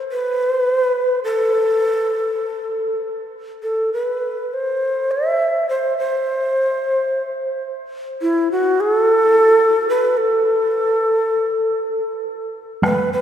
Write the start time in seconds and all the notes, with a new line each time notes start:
0.11 B4
1.24 A4
3.63 A4
3.93 B4
4.53 C5
5.11 E5
5.69 C5
5.98 C5
8.22 E4
8.52 F#4
8.81 G#4
8.97 A4
9.90 B4
10.17 A4
12.83 B4, taiko rim, taiko high
13.13 B4